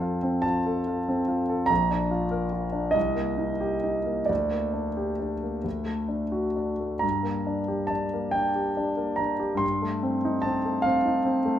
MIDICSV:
0, 0, Header, 1, 2, 480
1, 0, Start_track
1, 0, Key_signature, -2, "minor"
1, 0, Tempo, 847458
1, 963, Time_signature, 6, 3, 24, 8
1, 1919, Tempo, 906344
1, 4319, Tempo, 852273
1, 5279, Tempo, 811908
1, 6441, End_track
2, 0, Start_track
2, 0, Title_t, "Grand piano"
2, 0, Program_c, 0, 0
2, 0, Control_c, 0, 64, 127
2, 0, Note_on_c, 0, 41, 39
2, 0, Note_on_c, 0, 60, 31
2, 0, Note_on_c, 0, 65, 32
2, 0, Note_on_c, 0, 69, 35
2, 0, Note_on_c, 0, 72, 57
2, 8, Note_off_c, 0, 65, 0
2, 8, Note_on_c, 0, 65, 35
2, 85, Note_off_c, 0, 69, 0
2, 130, Note_off_c, 0, 60, 0
2, 130, Note_on_c, 0, 60, 32
2, 209, Note_off_c, 0, 65, 0
2, 237, Note_on_c, 0, 81, 70
2, 252, Note_off_c, 0, 72, 0
2, 259, Note_on_c, 0, 65, 38
2, 328, Note_off_c, 0, 60, 0
2, 375, Note_on_c, 0, 69, 38
2, 449, Note_off_c, 0, 65, 0
2, 494, Note_on_c, 0, 65, 37
2, 563, Note_off_c, 0, 69, 0
2, 615, Note_on_c, 0, 60, 42
2, 681, Note_off_c, 0, 65, 0
2, 726, Note_on_c, 0, 65, 36
2, 800, Note_off_c, 0, 60, 0
2, 846, Note_on_c, 0, 69, 39
2, 915, Note_off_c, 0, 65, 0
2, 941, Note_on_c, 0, 82, 84
2, 949, Note_off_c, 0, 41, 0
2, 955, Note_off_c, 0, 81, 0
2, 963, Note_on_c, 0, 34, 49
2, 964, Note_off_c, 0, 69, 0
2, 972, Control_c, 0, 64, 0
2, 1071, Control_c, 0, 64, 127
2, 1081, Note_on_c, 0, 62, 38
2, 1196, Note_on_c, 0, 65, 39
2, 1270, Note_off_c, 0, 62, 0
2, 1310, Note_on_c, 0, 70, 39
2, 1386, Note_off_c, 0, 65, 0
2, 1430, Note_on_c, 0, 65, 39
2, 1502, Note_off_c, 0, 70, 0
2, 1543, Note_on_c, 0, 62, 32
2, 1623, Note_off_c, 0, 65, 0
2, 1648, Note_on_c, 0, 75, 68
2, 1652, Note_off_c, 0, 34, 0
2, 1663, Note_off_c, 0, 82, 0
2, 1665, Note_on_c, 0, 36, 40
2, 1669, Note_off_c, 0, 62, 0
2, 1684, Control_c, 0, 64, 0
2, 1783, Control_c, 0, 64, 127
2, 1785, Note_on_c, 0, 58, 33
2, 1911, Note_on_c, 0, 63, 32
2, 1986, Note_off_c, 0, 58, 0
2, 2034, Note_on_c, 0, 67, 40
2, 2105, Note_off_c, 0, 63, 0
2, 2155, Note_on_c, 0, 63, 32
2, 2227, Note_off_c, 0, 67, 0
2, 2274, Note_on_c, 0, 58, 31
2, 2348, Note_off_c, 0, 63, 0
2, 2373, Note_off_c, 0, 36, 0
2, 2378, Note_on_c, 0, 74, 52
2, 2386, Note_off_c, 0, 75, 0
2, 2397, Note_off_c, 0, 58, 0
2, 2398, Note_on_c, 0, 38, 40
2, 2409, Control_c, 0, 64, 0
2, 2496, Control_c, 0, 64, 127
2, 2516, Note_on_c, 0, 58, 29
2, 2632, Note_on_c, 0, 62, 29
2, 2712, Note_off_c, 0, 58, 0
2, 2756, Note_on_c, 0, 67, 33
2, 2829, Note_off_c, 0, 62, 0
2, 2876, Note_on_c, 0, 62, 27
2, 2950, Note_off_c, 0, 67, 0
2, 3000, Note_on_c, 0, 58, 26
2, 3068, Note_off_c, 0, 62, 0
2, 3097, Note_off_c, 0, 38, 0
2, 3108, Note_off_c, 0, 74, 0
2, 3112, Note_on_c, 0, 38, 35
2, 3118, Note_off_c, 0, 58, 0
2, 3127, Control_c, 0, 64, 0
2, 3209, Control_c, 0, 64, 127
2, 3226, Note_on_c, 0, 57, 30
2, 3348, Note_on_c, 0, 62, 28
2, 3425, Note_off_c, 0, 57, 0
2, 3472, Note_on_c, 0, 66, 35
2, 3548, Note_off_c, 0, 62, 0
2, 3600, Note_on_c, 0, 62, 27
2, 3674, Note_off_c, 0, 66, 0
2, 3723, Note_on_c, 0, 57, 26
2, 3798, Note_off_c, 0, 62, 0
2, 3823, Note_off_c, 0, 38, 0
2, 3828, Note_on_c, 0, 82, 64
2, 3845, Note_on_c, 0, 43, 40
2, 3846, Note_off_c, 0, 57, 0
2, 3858, Control_c, 0, 64, 0
2, 3954, Control_c, 0, 64, 127
2, 3955, Note_on_c, 0, 58, 31
2, 4079, Note_on_c, 0, 62, 33
2, 4150, Note_off_c, 0, 58, 0
2, 4193, Note_on_c, 0, 67, 34
2, 4270, Note_off_c, 0, 62, 0
2, 4292, Note_on_c, 0, 81, 61
2, 4310, Note_off_c, 0, 82, 0
2, 4310, Note_on_c, 0, 62, 31
2, 4389, Note_off_c, 0, 67, 0
2, 4440, Note_on_c, 0, 58, 32
2, 4511, Note_off_c, 0, 62, 0
2, 4541, Note_on_c, 0, 79, 60
2, 4550, Note_off_c, 0, 81, 0
2, 4561, Note_on_c, 0, 62, 33
2, 4636, Note_off_c, 0, 58, 0
2, 4677, Note_on_c, 0, 67, 34
2, 4755, Note_off_c, 0, 62, 0
2, 4799, Note_on_c, 0, 62, 34
2, 4873, Note_off_c, 0, 67, 0
2, 4908, Note_on_c, 0, 58, 37
2, 4993, Note_off_c, 0, 62, 0
2, 5017, Note_on_c, 0, 82, 59
2, 5032, Note_off_c, 0, 79, 0
2, 5034, Note_on_c, 0, 62, 32
2, 5107, Note_off_c, 0, 58, 0
2, 5151, Note_on_c, 0, 67, 35
2, 5227, Note_off_c, 0, 43, 0
2, 5228, Note_off_c, 0, 62, 0
2, 5236, Note_on_c, 0, 43, 41
2, 5251, Note_on_c, 0, 84, 72
2, 5267, Note_off_c, 0, 82, 0
2, 5274, Note_off_c, 0, 67, 0
2, 5290, Control_c, 0, 64, 0
2, 5396, Note_on_c, 0, 57, 35
2, 5402, Control_c, 0, 64, 127
2, 5519, Note_on_c, 0, 60, 33
2, 5595, Note_off_c, 0, 57, 0
2, 5648, Note_on_c, 0, 63, 40
2, 5717, Note_off_c, 0, 60, 0
2, 5747, Note_on_c, 0, 81, 71
2, 5753, Note_off_c, 0, 84, 0
2, 5769, Note_on_c, 0, 60, 36
2, 5840, Note_off_c, 0, 63, 0
2, 5888, Note_on_c, 0, 57, 37
2, 5960, Note_off_c, 0, 60, 0
2, 5987, Note_on_c, 0, 77, 71
2, 5996, Note_off_c, 0, 81, 0
2, 6009, Note_on_c, 0, 60, 38
2, 6077, Note_off_c, 0, 57, 0
2, 6125, Note_on_c, 0, 63, 37
2, 6197, Note_off_c, 0, 60, 0
2, 6242, Note_on_c, 0, 60, 38
2, 6314, Note_off_c, 0, 63, 0
2, 6360, Note_on_c, 0, 57, 43
2, 6431, Note_off_c, 0, 60, 0
2, 6441, Note_off_c, 0, 43, 0
2, 6441, Note_off_c, 0, 57, 0
2, 6441, Note_off_c, 0, 77, 0
2, 6441, End_track
0, 0, End_of_file